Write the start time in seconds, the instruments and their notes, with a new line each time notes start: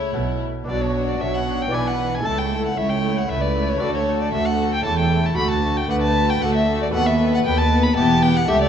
Already playing: double bass section C#2, viola section A3, lute A3 E4, violin section E4, violin C#5
0.13 double bass section B1, cello section B2, lute B2
0.64 double bass section B1, cello section B2, lute B2 D4 B4, viola section F#3, violin section D4
0.69 violin section F#4, violin D5
0.81 violin C#5
0.94 viola section F#3, violin section D4
1.09 violin D5
1.19 double bass section B1, cello section B2, lute B2, viola section F#3, violin section D4 C#5, violin E5
1.34 violin F#5
1.46 viola section F#3, violin section D4
1.62 violin G5
1.68 lute B3 E4 D5
1.72 double bass section B1, cello section B2, lute B2, viola section E3, violin section D4 B4, violin G#5
1.87 violin F#5
1.99 viola section E3, violin section D4
2.14 violin G#5
2.20 lute A3 E4 A4
2.24 cello section C#2, double bass section C#2, viola section A3, violin section E4 A4, violin A5
2.38 violin G5
2.50 viola section A3, violin section E4
2.66 violin F#5
2.76 cello section C#2, double bass section C#2, viola section A3, violin section E4 C#5, violin E5
2.90 violin G5
3.03 viola section A3, violin section E4
3.18 violin F#5
3.28 cello section C#2, double bass section C#2, viola section A3, violin section E4 B4, violin E5
3.41 violin D5
3.54 viola section A3, violin section E4
3.69 violin C#5
3.76 lute A3 F#4 A4, violin D5
3.80 cello section D2, lute D2, double bass section D2, viola section A3, violin section F#4 A4
3.95 violin C#5
4.05 viola section A3, violin section F#4
4.21 violin D5
4.32 lute D2, cello section D2, double bass section D2, viola section A3, violin section F#4, violin E5
4.45 violin F#5
4.58 viola section A3, violin section F#4
4.74 violin G5
4.81 lute C#4 E4 A4, violin section E4, violin A5
4.85 double bass section E1, lute E2, cello section E2, viola section A3
4.98 violin G5
5.11 viola section A3, violin section E4
5.26 violin A5
5.33 lute A3 F#4 A4, viola section A3, violin section F#4, violin B5
5.38 double bass section D2, lute D2, cello section D2, violin section F#4
5.50 violin A5
5.63 viola section A3, violin section F#4
5.77 violin G5
5.89 lute D2, cello section D2, double bass section D2, viola section A3, violin section F#4 B4, violin F#5
6.01 violin A5
6.16 viola section A3, violin section F#4
6.30 violin G5
6.41 cello section D2, double bass section D2, lute D2, viola section A3, violin section F#4 A4, violin F#5
6.54 violin E5
6.68 viola section A3, violin section F#4
6.82 violin D5
6.89 lute B3 F#4 A4
6.93 cello section D#2, lute D#2, double bass section D#2, viola section B3, violin section A4 B4, violin F#5
7.06 violin E5
7.19 viola section B3, violin section A4
7.34 violin F#5
7.45 double bass section D#2, cello section D#2, lute D#2, viola section B3, violin section A4, violin G5
7.58 violin A5
7.71 viola section B3, violin section A4
7.83 violin B5
7.93 cello section E2, lute E2 B3 E4 G4, viola section B3, violin section G4, violin A5
7.98 double bass section E1, violin section G4
8.22 viola section B3, violin section G4, violin G5
8.37 violin F#5
8.45 cello section C#2, lute A3 E4 G4, violin E5
8.49 double bass section C#2, viola section A3, violin section G4 A4
8.61 violin D5